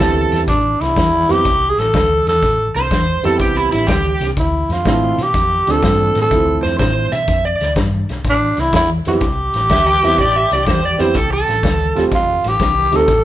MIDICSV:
0, 0, Header, 1, 6, 480
1, 0, Start_track
1, 0, Key_signature, 0, "minor"
1, 0, Tempo, 485044
1, 472, Time_signature, 4, 2, 24, 8
1, 13102, End_track
2, 0, Start_track
2, 0, Title_t, "Electric slide guitar"
2, 0, Program_c, 0, 29
2, 0, Note_on_c, 0, 69, 99
2, 386, Note_off_c, 0, 69, 0
2, 2733, Note_on_c, 0, 72, 90
2, 3194, Note_off_c, 0, 72, 0
2, 3219, Note_on_c, 0, 69, 76
2, 3367, Note_off_c, 0, 69, 0
2, 3374, Note_on_c, 0, 67, 78
2, 3524, Note_off_c, 0, 67, 0
2, 3528, Note_on_c, 0, 64, 76
2, 3673, Note_off_c, 0, 64, 0
2, 3685, Note_on_c, 0, 64, 75
2, 3829, Note_on_c, 0, 67, 83
2, 3840, Note_off_c, 0, 64, 0
2, 4226, Note_off_c, 0, 67, 0
2, 6560, Note_on_c, 0, 72, 91
2, 6712, Note_off_c, 0, 72, 0
2, 6724, Note_on_c, 0, 72, 88
2, 7036, Note_off_c, 0, 72, 0
2, 7046, Note_on_c, 0, 76, 78
2, 7357, Note_off_c, 0, 76, 0
2, 7374, Note_on_c, 0, 74, 86
2, 7630, Note_off_c, 0, 74, 0
2, 9611, Note_on_c, 0, 76, 89
2, 9762, Note_on_c, 0, 79, 84
2, 9763, Note_off_c, 0, 76, 0
2, 9918, Note_off_c, 0, 79, 0
2, 9943, Note_on_c, 0, 76, 76
2, 10088, Note_off_c, 0, 76, 0
2, 10098, Note_on_c, 0, 74, 80
2, 10246, Note_off_c, 0, 74, 0
2, 10252, Note_on_c, 0, 76, 79
2, 10402, Note_off_c, 0, 76, 0
2, 10417, Note_on_c, 0, 74, 80
2, 10564, Note_off_c, 0, 74, 0
2, 10571, Note_on_c, 0, 72, 79
2, 10721, Note_off_c, 0, 72, 0
2, 10739, Note_on_c, 0, 74, 90
2, 10885, Note_off_c, 0, 74, 0
2, 10889, Note_on_c, 0, 72, 84
2, 11039, Note_off_c, 0, 72, 0
2, 11047, Note_on_c, 0, 69, 74
2, 11198, Note_off_c, 0, 69, 0
2, 11215, Note_on_c, 0, 69, 91
2, 11904, Note_off_c, 0, 69, 0
2, 13102, End_track
3, 0, Start_track
3, 0, Title_t, "Tenor saxophone"
3, 0, Program_c, 1, 66
3, 478, Note_on_c, 1, 62, 89
3, 805, Note_on_c, 1, 64, 99
3, 819, Note_off_c, 1, 62, 0
3, 1297, Note_on_c, 1, 67, 97
3, 1312, Note_off_c, 1, 64, 0
3, 1677, Note_on_c, 1, 68, 79
3, 1692, Note_off_c, 1, 67, 0
3, 1774, Note_on_c, 1, 69, 91
3, 1789, Note_off_c, 1, 68, 0
3, 2249, Note_off_c, 1, 69, 0
3, 2261, Note_on_c, 1, 69, 95
3, 2700, Note_off_c, 1, 69, 0
3, 4349, Note_on_c, 1, 64, 81
3, 4671, Note_on_c, 1, 65, 93
3, 4686, Note_off_c, 1, 64, 0
3, 5173, Note_on_c, 1, 67, 97
3, 5187, Note_off_c, 1, 65, 0
3, 5652, Note_on_c, 1, 69, 101
3, 5666, Note_off_c, 1, 67, 0
3, 6111, Note_off_c, 1, 69, 0
3, 6151, Note_on_c, 1, 69, 95
3, 6569, Note_off_c, 1, 69, 0
3, 8210, Note_on_c, 1, 62, 89
3, 8514, Note_on_c, 1, 64, 88
3, 8528, Note_off_c, 1, 62, 0
3, 8659, Note_off_c, 1, 64, 0
3, 8667, Note_on_c, 1, 64, 106
3, 8807, Note_off_c, 1, 64, 0
3, 8990, Note_on_c, 1, 67, 109
3, 11489, Note_off_c, 1, 67, 0
3, 12022, Note_on_c, 1, 65, 92
3, 12356, Note_on_c, 1, 67, 93
3, 12371, Note_off_c, 1, 65, 0
3, 12825, Note_on_c, 1, 69, 101
3, 12840, Note_off_c, 1, 67, 0
3, 13102, Note_off_c, 1, 69, 0
3, 13102, End_track
4, 0, Start_track
4, 0, Title_t, "Upright piano"
4, 0, Program_c, 2, 0
4, 0, Note_on_c, 2, 55, 72
4, 0, Note_on_c, 2, 59, 65
4, 0, Note_on_c, 2, 60, 65
4, 0, Note_on_c, 2, 64, 87
4, 444, Note_off_c, 2, 55, 0
4, 445, Note_off_c, 2, 59, 0
4, 447, Note_off_c, 2, 60, 0
4, 449, Note_off_c, 2, 64, 0
4, 1273, Note_on_c, 2, 55, 75
4, 1277, Note_on_c, 2, 59, 68
4, 1283, Note_on_c, 2, 60, 67
4, 1285, Note_on_c, 2, 64, 76
4, 1418, Note_off_c, 2, 55, 0
4, 1420, Note_off_c, 2, 59, 0
4, 1423, Note_off_c, 2, 60, 0
4, 1424, Note_off_c, 2, 64, 0
4, 3200, Note_on_c, 2, 59, 62
4, 3201, Note_on_c, 2, 55, 66
4, 3203, Note_on_c, 2, 60, 55
4, 3215, Note_on_c, 2, 64, 66
4, 3810, Note_off_c, 2, 59, 0
4, 3811, Note_off_c, 2, 55, 0
4, 3812, Note_off_c, 2, 60, 0
4, 3818, Note_off_c, 2, 64, 0
4, 4793, Note_on_c, 2, 53, 77
4, 4796, Note_on_c, 2, 57, 67
4, 4810, Note_on_c, 2, 60, 66
4, 4812, Note_on_c, 2, 64, 78
4, 5091, Note_off_c, 2, 53, 0
4, 5092, Note_off_c, 2, 57, 0
4, 5099, Note_off_c, 2, 60, 0
4, 5100, Note_off_c, 2, 64, 0
4, 5613, Note_on_c, 2, 53, 68
4, 5613, Note_on_c, 2, 57, 61
4, 5620, Note_on_c, 2, 60, 62
4, 5624, Note_on_c, 2, 62, 70
4, 6218, Note_off_c, 2, 53, 0
4, 6218, Note_off_c, 2, 57, 0
4, 6222, Note_off_c, 2, 60, 0
4, 6223, Note_off_c, 2, 62, 0
4, 6247, Note_on_c, 2, 53, 61
4, 6253, Note_on_c, 2, 57, 53
4, 6260, Note_on_c, 2, 60, 56
4, 6264, Note_on_c, 2, 64, 67
4, 6986, Note_off_c, 2, 53, 0
4, 6989, Note_off_c, 2, 57, 0
4, 6992, Note_off_c, 2, 60, 0
4, 6994, Note_off_c, 2, 64, 0
4, 8974, Note_on_c, 2, 55, 69
4, 8977, Note_on_c, 2, 59, 63
4, 8981, Note_on_c, 2, 60, 59
4, 8984, Note_on_c, 2, 64, 73
4, 9113, Note_off_c, 2, 55, 0
4, 9114, Note_off_c, 2, 59, 0
4, 9116, Note_off_c, 2, 60, 0
4, 9118, Note_off_c, 2, 64, 0
4, 9924, Note_on_c, 2, 55, 68
4, 9927, Note_on_c, 2, 59, 63
4, 9934, Note_on_c, 2, 60, 62
4, 9941, Note_on_c, 2, 64, 75
4, 10066, Note_off_c, 2, 55, 0
4, 10068, Note_off_c, 2, 59, 0
4, 10071, Note_off_c, 2, 60, 0
4, 10075, Note_off_c, 2, 64, 0
4, 10859, Note_on_c, 2, 55, 63
4, 10872, Note_on_c, 2, 59, 64
4, 10877, Note_on_c, 2, 60, 57
4, 10879, Note_on_c, 2, 64, 70
4, 11012, Note_off_c, 2, 55, 0
4, 11019, Note_off_c, 2, 59, 0
4, 11021, Note_off_c, 2, 60, 0
4, 11022, Note_off_c, 2, 64, 0
4, 11827, Note_on_c, 2, 55, 76
4, 11832, Note_on_c, 2, 57, 72
4, 11840, Note_on_c, 2, 60, 66
4, 11841, Note_on_c, 2, 65, 82
4, 11974, Note_off_c, 2, 55, 0
4, 11976, Note_off_c, 2, 57, 0
4, 11981, Note_off_c, 2, 60, 0
4, 11981, Note_off_c, 2, 65, 0
4, 12773, Note_on_c, 2, 55, 68
4, 12783, Note_on_c, 2, 57, 59
4, 12787, Note_on_c, 2, 60, 64
4, 12791, Note_on_c, 2, 63, 81
4, 12925, Note_off_c, 2, 55, 0
4, 12930, Note_off_c, 2, 57, 0
4, 12932, Note_off_c, 2, 60, 0
4, 12934, Note_off_c, 2, 63, 0
4, 13102, End_track
5, 0, Start_track
5, 0, Title_t, "Fingered electric bass"
5, 0, Program_c, 3, 33
5, 0, Note_on_c, 3, 38, 93
5, 254, Note_off_c, 3, 38, 0
5, 316, Note_on_c, 3, 40, 89
5, 444, Note_off_c, 3, 40, 0
5, 479, Note_on_c, 3, 33, 80
5, 739, Note_off_c, 3, 33, 0
5, 799, Note_on_c, 3, 36, 77
5, 926, Note_off_c, 3, 36, 0
5, 955, Note_on_c, 3, 40, 82
5, 1218, Note_off_c, 3, 40, 0
5, 1282, Note_on_c, 3, 41, 82
5, 1409, Note_off_c, 3, 41, 0
5, 1440, Note_on_c, 3, 36, 87
5, 1701, Note_off_c, 3, 36, 0
5, 1757, Note_on_c, 3, 33, 74
5, 1887, Note_off_c, 3, 33, 0
5, 1920, Note_on_c, 3, 38, 88
5, 2182, Note_off_c, 3, 38, 0
5, 2244, Note_on_c, 3, 40, 88
5, 2371, Note_off_c, 3, 40, 0
5, 2397, Note_on_c, 3, 33, 77
5, 2661, Note_off_c, 3, 33, 0
5, 2722, Note_on_c, 3, 36, 80
5, 2851, Note_off_c, 3, 36, 0
5, 2885, Note_on_c, 3, 40, 83
5, 3147, Note_off_c, 3, 40, 0
5, 3212, Note_on_c, 3, 41, 83
5, 3338, Note_off_c, 3, 41, 0
5, 3364, Note_on_c, 3, 36, 74
5, 3626, Note_off_c, 3, 36, 0
5, 3689, Note_on_c, 3, 33, 79
5, 3816, Note_off_c, 3, 33, 0
5, 3843, Note_on_c, 3, 38, 87
5, 4106, Note_off_c, 3, 38, 0
5, 4161, Note_on_c, 3, 36, 81
5, 4292, Note_off_c, 3, 36, 0
5, 4326, Note_on_c, 3, 38, 83
5, 4588, Note_off_c, 3, 38, 0
5, 4640, Note_on_c, 3, 41, 76
5, 4772, Note_off_c, 3, 41, 0
5, 4804, Note_on_c, 3, 45, 75
5, 5068, Note_off_c, 3, 45, 0
5, 5127, Note_on_c, 3, 47, 74
5, 5256, Note_off_c, 3, 47, 0
5, 5291, Note_on_c, 3, 41, 82
5, 5552, Note_off_c, 3, 41, 0
5, 5611, Note_on_c, 3, 38, 69
5, 5739, Note_off_c, 3, 38, 0
5, 5763, Note_on_c, 3, 43, 91
5, 6027, Note_off_c, 3, 43, 0
5, 6090, Note_on_c, 3, 45, 83
5, 6218, Note_off_c, 3, 45, 0
5, 6247, Note_on_c, 3, 38, 78
5, 6510, Note_off_c, 3, 38, 0
5, 6577, Note_on_c, 3, 41, 80
5, 6702, Note_off_c, 3, 41, 0
5, 6725, Note_on_c, 3, 45, 90
5, 6988, Note_off_c, 3, 45, 0
5, 7048, Note_on_c, 3, 47, 79
5, 7177, Note_off_c, 3, 47, 0
5, 7205, Note_on_c, 3, 41, 86
5, 7468, Note_off_c, 3, 41, 0
5, 7532, Note_on_c, 3, 38, 73
5, 7659, Note_off_c, 3, 38, 0
5, 7681, Note_on_c, 3, 43, 97
5, 7946, Note_off_c, 3, 43, 0
5, 8012, Note_on_c, 3, 35, 87
5, 8139, Note_off_c, 3, 35, 0
5, 8161, Note_on_c, 3, 33, 80
5, 8425, Note_off_c, 3, 33, 0
5, 8488, Note_on_c, 3, 36, 82
5, 8616, Note_off_c, 3, 36, 0
5, 8638, Note_on_c, 3, 40, 88
5, 8903, Note_off_c, 3, 40, 0
5, 8973, Note_on_c, 3, 41, 84
5, 9099, Note_off_c, 3, 41, 0
5, 9120, Note_on_c, 3, 36, 81
5, 9383, Note_off_c, 3, 36, 0
5, 9439, Note_on_c, 3, 33, 78
5, 9570, Note_off_c, 3, 33, 0
5, 9598, Note_on_c, 3, 38, 89
5, 9862, Note_off_c, 3, 38, 0
5, 9932, Note_on_c, 3, 40, 89
5, 10057, Note_off_c, 3, 40, 0
5, 10073, Note_on_c, 3, 33, 83
5, 10338, Note_off_c, 3, 33, 0
5, 10404, Note_on_c, 3, 36, 79
5, 10532, Note_off_c, 3, 36, 0
5, 10557, Note_on_c, 3, 40, 79
5, 10820, Note_off_c, 3, 40, 0
5, 10878, Note_on_c, 3, 41, 82
5, 11007, Note_off_c, 3, 41, 0
5, 11038, Note_on_c, 3, 36, 87
5, 11300, Note_off_c, 3, 36, 0
5, 11358, Note_on_c, 3, 33, 74
5, 11487, Note_off_c, 3, 33, 0
5, 11507, Note_on_c, 3, 38, 80
5, 11772, Note_off_c, 3, 38, 0
5, 11841, Note_on_c, 3, 28, 80
5, 11967, Note_off_c, 3, 28, 0
5, 11988, Note_on_c, 3, 29, 76
5, 12252, Note_off_c, 3, 29, 0
5, 12312, Note_on_c, 3, 33, 82
5, 12442, Note_off_c, 3, 33, 0
5, 12469, Note_on_c, 3, 36, 83
5, 12732, Note_off_c, 3, 36, 0
5, 12781, Note_on_c, 3, 38, 79
5, 12914, Note_off_c, 3, 38, 0
5, 12949, Note_on_c, 3, 33, 78
5, 13102, Note_off_c, 3, 33, 0
5, 13102, End_track
6, 0, Start_track
6, 0, Title_t, "Drums"
6, 5, Note_on_c, 9, 38, 116
6, 104, Note_off_c, 9, 38, 0
6, 316, Note_on_c, 9, 42, 71
6, 328, Note_on_c, 9, 38, 31
6, 415, Note_off_c, 9, 42, 0
6, 427, Note_off_c, 9, 38, 0
6, 473, Note_on_c, 9, 36, 80
6, 477, Note_on_c, 9, 42, 77
6, 489, Note_on_c, 9, 38, 32
6, 572, Note_off_c, 9, 36, 0
6, 576, Note_off_c, 9, 42, 0
6, 588, Note_off_c, 9, 38, 0
6, 803, Note_on_c, 9, 42, 62
6, 815, Note_on_c, 9, 38, 31
6, 902, Note_off_c, 9, 42, 0
6, 914, Note_off_c, 9, 38, 0
6, 952, Note_on_c, 9, 42, 71
6, 954, Note_on_c, 9, 36, 74
6, 964, Note_on_c, 9, 38, 96
6, 1051, Note_off_c, 9, 42, 0
6, 1053, Note_off_c, 9, 36, 0
6, 1063, Note_off_c, 9, 38, 0
6, 1279, Note_on_c, 9, 42, 66
6, 1291, Note_on_c, 9, 38, 37
6, 1378, Note_off_c, 9, 42, 0
6, 1389, Note_off_c, 9, 38, 0
6, 1434, Note_on_c, 9, 42, 78
6, 1438, Note_on_c, 9, 36, 85
6, 1446, Note_on_c, 9, 38, 33
6, 1533, Note_off_c, 9, 42, 0
6, 1537, Note_off_c, 9, 36, 0
6, 1545, Note_off_c, 9, 38, 0
6, 1765, Note_on_c, 9, 42, 52
6, 1776, Note_on_c, 9, 38, 34
6, 1864, Note_off_c, 9, 42, 0
6, 1875, Note_off_c, 9, 38, 0
6, 1916, Note_on_c, 9, 42, 82
6, 1918, Note_on_c, 9, 36, 77
6, 1928, Note_on_c, 9, 38, 108
6, 2015, Note_off_c, 9, 42, 0
6, 2017, Note_off_c, 9, 36, 0
6, 2027, Note_off_c, 9, 38, 0
6, 2245, Note_on_c, 9, 42, 61
6, 2257, Note_on_c, 9, 38, 33
6, 2344, Note_off_c, 9, 42, 0
6, 2356, Note_off_c, 9, 38, 0
6, 2399, Note_on_c, 9, 42, 74
6, 2400, Note_on_c, 9, 36, 72
6, 2411, Note_on_c, 9, 38, 33
6, 2498, Note_off_c, 9, 42, 0
6, 2499, Note_off_c, 9, 36, 0
6, 2510, Note_off_c, 9, 38, 0
6, 2723, Note_on_c, 9, 42, 50
6, 2735, Note_on_c, 9, 38, 33
6, 2822, Note_off_c, 9, 42, 0
6, 2834, Note_off_c, 9, 38, 0
6, 2881, Note_on_c, 9, 36, 75
6, 2881, Note_on_c, 9, 42, 65
6, 2893, Note_on_c, 9, 38, 96
6, 2979, Note_off_c, 9, 36, 0
6, 2980, Note_off_c, 9, 42, 0
6, 2992, Note_off_c, 9, 38, 0
6, 3205, Note_on_c, 9, 42, 63
6, 3217, Note_on_c, 9, 38, 34
6, 3304, Note_off_c, 9, 42, 0
6, 3316, Note_off_c, 9, 38, 0
6, 3360, Note_on_c, 9, 42, 82
6, 3361, Note_on_c, 9, 36, 86
6, 3372, Note_on_c, 9, 38, 37
6, 3459, Note_off_c, 9, 42, 0
6, 3460, Note_off_c, 9, 36, 0
6, 3471, Note_off_c, 9, 38, 0
6, 3683, Note_on_c, 9, 42, 61
6, 3695, Note_on_c, 9, 38, 34
6, 3782, Note_off_c, 9, 42, 0
6, 3794, Note_off_c, 9, 38, 0
6, 3841, Note_on_c, 9, 42, 89
6, 3843, Note_on_c, 9, 36, 81
6, 3853, Note_on_c, 9, 38, 111
6, 3940, Note_off_c, 9, 42, 0
6, 3942, Note_off_c, 9, 36, 0
6, 3952, Note_off_c, 9, 38, 0
6, 4166, Note_on_c, 9, 42, 67
6, 4178, Note_on_c, 9, 38, 33
6, 4265, Note_off_c, 9, 42, 0
6, 4277, Note_off_c, 9, 38, 0
6, 4323, Note_on_c, 9, 36, 75
6, 4327, Note_on_c, 9, 42, 74
6, 4339, Note_on_c, 9, 38, 29
6, 4422, Note_off_c, 9, 36, 0
6, 4426, Note_off_c, 9, 42, 0
6, 4437, Note_off_c, 9, 38, 0
6, 4650, Note_on_c, 9, 42, 55
6, 4661, Note_on_c, 9, 38, 33
6, 4749, Note_off_c, 9, 42, 0
6, 4760, Note_off_c, 9, 38, 0
6, 4805, Note_on_c, 9, 36, 80
6, 4805, Note_on_c, 9, 42, 81
6, 4817, Note_on_c, 9, 38, 99
6, 4904, Note_off_c, 9, 36, 0
6, 4904, Note_off_c, 9, 42, 0
6, 4916, Note_off_c, 9, 38, 0
6, 5130, Note_on_c, 9, 42, 69
6, 5142, Note_on_c, 9, 38, 33
6, 5229, Note_off_c, 9, 42, 0
6, 5241, Note_off_c, 9, 38, 0
6, 5286, Note_on_c, 9, 36, 79
6, 5290, Note_on_c, 9, 42, 87
6, 5302, Note_on_c, 9, 38, 33
6, 5385, Note_off_c, 9, 36, 0
6, 5389, Note_off_c, 9, 42, 0
6, 5401, Note_off_c, 9, 38, 0
6, 5612, Note_on_c, 9, 42, 63
6, 5624, Note_on_c, 9, 38, 32
6, 5711, Note_off_c, 9, 42, 0
6, 5723, Note_off_c, 9, 38, 0
6, 5764, Note_on_c, 9, 42, 86
6, 5765, Note_on_c, 9, 36, 80
6, 5776, Note_on_c, 9, 38, 107
6, 5863, Note_off_c, 9, 42, 0
6, 5864, Note_off_c, 9, 36, 0
6, 5875, Note_off_c, 9, 38, 0
6, 6087, Note_on_c, 9, 42, 59
6, 6099, Note_on_c, 9, 38, 36
6, 6186, Note_off_c, 9, 42, 0
6, 6198, Note_off_c, 9, 38, 0
6, 6242, Note_on_c, 9, 42, 71
6, 6245, Note_on_c, 9, 36, 76
6, 6254, Note_on_c, 9, 38, 31
6, 6341, Note_off_c, 9, 42, 0
6, 6344, Note_off_c, 9, 36, 0
6, 6353, Note_off_c, 9, 38, 0
6, 6573, Note_on_c, 9, 42, 51
6, 6585, Note_on_c, 9, 38, 32
6, 6672, Note_off_c, 9, 42, 0
6, 6684, Note_off_c, 9, 38, 0
6, 6721, Note_on_c, 9, 42, 74
6, 6724, Note_on_c, 9, 36, 78
6, 6733, Note_on_c, 9, 38, 90
6, 6820, Note_off_c, 9, 42, 0
6, 6823, Note_off_c, 9, 36, 0
6, 6832, Note_off_c, 9, 38, 0
6, 7048, Note_on_c, 9, 42, 58
6, 7059, Note_on_c, 9, 38, 34
6, 7147, Note_off_c, 9, 42, 0
6, 7158, Note_off_c, 9, 38, 0
6, 7203, Note_on_c, 9, 36, 80
6, 7204, Note_on_c, 9, 42, 79
6, 7215, Note_on_c, 9, 38, 33
6, 7302, Note_off_c, 9, 36, 0
6, 7303, Note_off_c, 9, 42, 0
6, 7314, Note_off_c, 9, 38, 0
6, 7526, Note_on_c, 9, 42, 60
6, 7538, Note_on_c, 9, 38, 31
6, 7625, Note_off_c, 9, 42, 0
6, 7637, Note_off_c, 9, 38, 0
6, 7676, Note_on_c, 9, 42, 78
6, 7681, Note_on_c, 9, 36, 76
6, 7688, Note_on_c, 9, 38, 104
6, 7775, Note_off_c, 9, 42, 0
6, 7780, Note_off_c, 9, 36, 0
6, 7787, Note_off_c, 9, 38, 0
6, 8007, Note_on_c, 9, 42, 58
6, 8019, Note_on_c, 9, 38, 36
6, 8106, Note_off_c, 9, 42, 0
6, 8118, Note_off_c, 9, 38, 0
6, 8159, Note_on_c, 9, 42, 84
6, 8160, Note_on_c, 9, 36, 73
6, 8171, Note_on_c, 9, 38, 30
6, 8258, Note_off_c, 9, 42, 0
6, 8259, Note_off_c, 9, 36, 0
6, 8270, Note_off_c, 9, 38, 0
6, 8482, Note_on_c, 9, 42, 60
6, 8493, Note_on_c, 9, 38, 29
6, 8581, Note_off_c, 9, 42, 0
6, 8592, Note_off_c, 9, 38, 0
6, 8637, Note_on_c, 9, 42, 81
6, 8638, Note_on_c, 9, 36, 74
6, 8649, Note_on_c, 9, 38, 96
6, 8736, Note_off_c, 9, 42, 0
6, 8737, Note_off_c, 9, 36, 0
6, 8748, Note_off_c, 9, 38, 0
6, 8958, Note_on_c, 9, 42, 61
6, 8970, Note_on_c, 9, 38, 36
6, 9057, Note_off_c, 9, 42, 0
6, 9069, Note_off_c, 9, 38, 0
6, 9111, Note_on_c, 9, 42, 80
6, 9117, Note_on_c, 9, 36, 79
6, 9123, Note_on_c, 9, 38, 36
6, 9210, Note_off_c, 9, 42, 0
6, 9216, Note_off_c, 9, 36, 0
6, 9222, Note_off_c, 9, 38, 0
6, 9439, Note_on_c, 9, 42, 64
6, 9451, Note_on_c, 9, 38, 32
6, 9538, Note_off_c, 9, 42, 0
6, 9550, Note_off_c, 9, 38, 0
6, 9594, Note_on_c, 9, 42, 85
6, 9597, Note_on_c, 9, 36, 78
6, 9606, Note_on_c, 9, 38, 108
6, 9693, Note_off_c, 9, 42, 0
6, 9696, Note_off_c, 9, 36, 0
6, 9705, Note_off_c, 9, 38, 0
6, 9919, Note_on_c, 9, 42, 63
6, 9931, Note_on_c, 9, 38, 34
6, 10018, Note_off_c, 9, 42, 0
6, 10030, Note_off_c, 9, 38, 0
6, 10077, Note_on_c, 9, 36, 72
6, 10078, Note_on_c, 9, 42, 71
6, 10090, Note_on_c, 9, 38, 32
6, 10176, Note_off_c, 9, 36, 0
6, 10177, Note_off_c, 9, 42, 0
6, 10189, Note_off_c, 9, 38, 0
6, 10402, Note_on_c, 9, 42, 58
6, 10414, Note_on_c, 9, 38, 34
6, 10501, Note_off_c, 9, 42, 0
6, 10513, Note_off_c, 9, 38, 0
6, 10553, Note_on_c, 9, 42, 75
6, 10555, Note_on_c, 9, 36, 71
6, 10565, Note_on_c, 9, 38, 106
6, 10652, Note_off_c, 9, 42, 0
6, 10654, Note_off_c, 9, 36, 0
6, 10664, Note_off_c, 9, 38, 0
6, 10878, Note_on_c, 9, 42, 63
6, 10890, Note_on_c, 9, 38, 36
6, 10977, Note_off_c, 9, 42, 0
6, 10989, Note_off_c, 9, 38, 0
6, 11032, Note_on_c, 9, 42, 75
6, 11034, Note_on_c, 9, 36, 81
6, 11044, Note_on_c, 9, 38, 36
6, 11131, Note_off_c, 9, 42, 0
6, 11133, Note_off_c, 9, 36, 0
6, 11143, Note_off_c, 9, 38, 0
6, 11358, Note_on_c, 9, 42, 54
6, 11370, Note_on_c, 9, 38, 35
6, 11457, Note_off_c, 9, 42, 0
6, 11469, Note_off_c, 9, 38, 0
6, 11511, Note_on_c, 9, 36, 80
6, 11515, Note_on_c, 9, 42, 80
6, 11527, Note_on_c, 9, 38, 119
6, 11610, Note_off_c, 9, 36, 0
6, 11614, Note_off_c, 9, 42, 0
6, 11626, Note_off_c, 9, 38, 0
6, 11839, Note_on_c, 9, 42, 62
6, 11851, Note_on_c, 9, 38, 36
6, 11938, Note_off_c, 9, 42, 0
6, 11950, Note_off_c, 9, 38, 0
6, 11990, Note_on_c, 9, 36, 76
6, 11994, Note_on_c, 9, 42, 67
6, 12006, Note_on_c, 9, 38, 31
6, 12089, Note_off_c, 9, 36, 0
6, 12093, Note_off_c, 9, 42, 0
6, 12105, Note_off_c, 9, 38, 0
6, 12313, Note_on_c, 9, 42, 62
6, 12325, Note_on_c, 9, 38, 34
6, 12412, Note_off_c, 9, 42, 0
6, 12424, Note_off_c, 9, 38, 0
6, 12466, Note_on_c, 9, 36, 78
6, 12466, Note_on_c, 9, 42, 82
6, 12478, Note_on_c, 9, 38, 105
6, 12565, Note_off_c, 9, 36, 0
6, 12565, Note_off_c, 9, 42, 0
6, 12577, Note_off_c, 9, 38, 0
6, 12790, Note_on_c, 9, 42, 65
6, 12801, Note_on_c, 9, 38, 33
6, 12889, Note_off_c, 9, 42, 0
6, 12900, Note_off_c, 9, 38, 0
6, 12943, Note_on_c, 9, 36, 87
6, 12944, Note_on_c, 9, 42, 90
6, 12956, Note_on_c, 9, 38, 31
6, 13042, Note_off_c, 9, 36, 0
6, 13043, Note_off_c, 9, 42, 0
6, 13055, Note_off_c, 9, 38, 0
6, 13102, End_track
0, 0, End_of_file